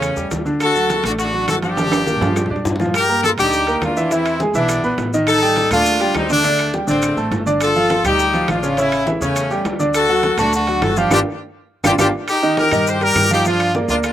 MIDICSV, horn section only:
0, 0, Header, 1, 2, 480
1, 0, Start_track
1, 0, Key_signature, -2, "minor"
1, 0, Tempo, 292113
1, 992, Time_signature, 4, 2, 24, 8
1, 23213, End_track
2, 0, Start_track
2, 0, Title_t, "Horn section"
2, 0, Program_c, 0, 61
2, 0, Note_on_c, 0, 57, 60
2, 0, Note_on_c, 0, 61, 89
2, 464, Note_off_c, 0, 61, 0
2, 475, Note_off_c, 0, 57, 0
2, 1013, Note_on_c, 0, 69, 112
2, 1025, Note_on_c, 0, 66, 92
2, 1674, Note_off_c, 0, 69, 0
2, 1680, Note_off_c, 0, 66, 0
2, 1732, Note_on_c, 0, 66, 93
2, 1745, Note_on_c, 0, 62, 70
2, 1836, Note_off_c, 0, 66, 0
2, 1846, Note_off_c, 0, 62, 0
2, 1959, Note_on_c, 0, 66, 95
2, 1977, Note_on_c, 0, 62, 64
2, 2403, Note_off_c, 0, 66, 0
2, 2413, Note_off_c, 0, 62, 0
2, 2458, Note_on_c, 0, 69, 89
2, 2468, Note_on_c, 0, 66, 71
2, 2560, Note_off_c, 0, 69, 0
2, 2569, Note_off_c, 0, 66, 0
2, 2682, Note_on_c, 0, 67, 104
2, 2699, Note_on_c, 0, 62, 75
2, 4293, Note_off_c, 0, 67, 0
2, 4302, Note_off_c, 0, 62, 0
2, 4862, Note_on_c, 0, 67, 94
2, 4867, Note_on_c, 0, 70, 113
2, 5296, Note_off_c, 0, 67, 0
2, 5298, Note_off_c, 0, 70, 0
2, 5331, Note_on_c, 0, 69, 111
2, 5338, Note_on_c, 0, 65, 75
2, 5435, Note_off_c, 0, 69, 0
2, 5441, Note_off_c, 0, 65, 0
2, 5572, Note_on_c, 0, 67, 114
2, 5583, Note_on_c, 0, 63, 83
2, 6233, Note_off_c, 0, 67, 0
2, 6239, Note_off_c, 0, 63, 0
2, 6294, Note_on_c, 0, 65, 87
2, 6296, Note_on_c, 0, 62, 76
2, 6764, Note_off_c, 0, 65, 0
2, 6765, Note_off_c, 0, 62, 0
2, 6776, Note_on_c, 0, 64, 100
2, 6786, Note_on_c, 0, 60, 73
2, 7244, Note_off_c, 0, 64, 0
2, 7249, Note_off_c, 0, 60, 0
2, 7494, Note_on_c, 0, 62, 84
2, 7504, Note_on_c, 0, 59, 66
2, 8153, Note_off_c, 0, 62, 0
2, 8158, Note_off_c, 0, 59, 0
2, 8672, Note_on_c, 0, 69, 119
2, 8685, Note_on_c, 0, 63, 92
2, 9341, Note_off_c, 0, 69, 0
2, 9348, Note_off_c, 0, 63, 0
2, 9405, Note_on_c, 0, 65, 118
2, 9419, Note_on_c, 0, 62, 80
2, 10067, Note_off_c, 0, 65, 0
2, 10075, Note_off_c, 0, 62, 0
2, 10141, Note_on_c, 0, 63, 86
2, 10143, Note_on_c, 0, 60, 72
2, 10350, Note_off_c, 0, 60, 0
2, 10350, Note_off_c, 0, 63, 0
2, 10375, Note_on_c, 0, 62, 107
2, 10380, Note_on_c, 0, 57, 77
2, 11032, Note_off_c, 0, 62, 0
2, 11035, Note_off_c, 0, 57, 0
2, 11338, Note_on_c, 0, 60, 79
2, 11341, Note_on_c, 0, 57, 63
2, 11992, Note_off_c, 0, 60, 0
2, 11994, Note_off_c, 0, 57, 0
2, 12508, Note_on_c, 0, 69, 114
2, 12527, Note_on_c, 0, 65, 83
2, 13176, Note_off_c, 0, 69, 0
2, 13186, Note_off_c, 0, 65, 0
2, 13234, Note_on_c, 0, 67, 110
2, 13243, Note_on_c, 0, 63, 86
2, 13899, Note_off_c, 0, 67, 0
2, 13904, Note_off_c, 0, 63, 0
2, 13965, Note_on_c, 0, 65, 84
2, 13968, Note_on_c, 0, 62, 75
2, 14434, Note_off_c, 0, 65, 0
2, 14436, Note_off_c, 0, 62, 0
2, 14443, Note_on_c, 0, 64, 98
2, 14450, Note_on_c, 0, 61, 68
2, 14913, Note_off_c, 0, 64, 0
2, 14917, Note_off_c, 0, 61, 0
2, 15164, Note_on_c, 0, 61, 83
2, 15166, Note_on_c, 0, 57, 67
2, 15824, Note_off_c, 0, 61, 0
2, 15825, Note_off_c, 0, 57, 0
2, 16360, Note_on_c, 0, 69, 112
2, 16379, Note_on_c, 0, 66, 94
2, 17021, Note_off_c, 0, 69, 0
2, 17032, Note_off_c, 0, 66, 0
2, 17066, Note_on_c, 0, 66, 99
2, 17078, Note_on_c, 0, 62, 83
2, 17288, Note_off_c, 0, 66, 0
2, 17294, Note_off_c, 0, 62, 0
2, 17322, Note_on_c, 0, 66, 91
2, 17329, Note_on_c, 0, 62, 65
2, 17760, Note_off_c, 0, 66, 0
2, 17763, Note_off_c, 0, 62, 0
2, 17794, Note_on_c, 0, 69, 89
2, 17813, Note_on_c, 0, 66, 78
2, 18029, Note_off_c, 0, 69, 0
2, 18035, Note_on_c, 0, 67, 91
2, 18038, Note_off_c, 0, 66, 0
2, 18041, Note_on_c, 0, 62, 70
2, 18250, Note_off_c, 0, 62, 0
2, 18252, Note_off_c, 0, 67, 0
2, 18266, Note_on_c, 0, 65, 103
2, 18269, Note_on_c, 0, 62, 102
2, 18272, Note_on_c, 0, 67, 102
2, 18381, Note_off_c, 0, 65, 0
2, 18383, Note_off_c, 0, 62, 0
2, 18384, Note_off_c, 0, 67, 0
2, 19471, Note_on_c, 0, 67, 90
2, 19474, Note_on_c, 0, 62, 88
2, 19476, Note_on_c, 0, 65, 88
2, 19584, Note_off_c, 0, 67, 0
2, 19586, Note_off_c, 0, 62, 0
2, 19588, Note_off_c, 0, 65, 0
2, 19708, Note_on_c, 0, 67, 90
2, 19710, Note_on_c, 0, 62, 83
2, 19713, Note_on_c, 0, 65, 85
2, 19822, Note_off_c, 0, 67, 0
2, 19824, Note_off_c, 0, 62, 0
2, 19826, Note_off_c, 0, 65, 0
2, 20206, Note_on_c, 0, 67, 102
2, 20210, Note_on_c, 0, 63, 86
2, 20643, Note_off_c, 0, 67, 0
2, 20645, Note_off_c, 0, 63, 0
2, 20681, Note_on_c, 0, 70, 101
2, 20685, Note_on_c, 0, 67, 86
2, 21121, Note_off_c, 0, 70, 0
2, 21124, Note_off_c, 0, 67, 0
2, 21175, Note_on_c, 0, 67, 79
2, 21178, Note_on_c, 0, 72, 95
2, 21391, Note_off_c, 0, 67, 0
2, 21403, Note_off_c, 0, 72, 0
2, 21410, Note_on_c, 0, 70, 117
2, 21411, Note_on_c, 0, 67, 81
2, 21870, Note_off_c, 0, 67, 0
2, 21880, Note_off_c, 0, 70, 0
2, 21887, Note_on_c, 0, 63, 69
2, 21890, Note_on_c, 0, 67, 100
2, 22102, Note_off_c, 0, 63, 0
2, 22104, Note_off_c, 0, 67, 0
2, 22129, Note_on_c, 0, 62, 81
2, 22129, Note_on_c, 0, 65, 101
2, 22567, Note_off_c, 0, 62, 0
2, 22567, Note_off_c, 0, 65, 0
2, 22845, Note_on_c, 0, 62, 69
2, 22845, Note_on_c, 0, 65, 95
2, 22950, Note_off_c, 0, 62, 0
2, 22950, Note_off_c, 0, 65, 0
2, 23083, Note_on_c, 0, 62, 75
2, 23086, Note_on_c, 0, 65, 88
2, 23213, Note_off_c, 0, 62, 0
2, 23213, Note_off_c, 0, 65, 0
2, 23213, End_track
0, 0, End_of_file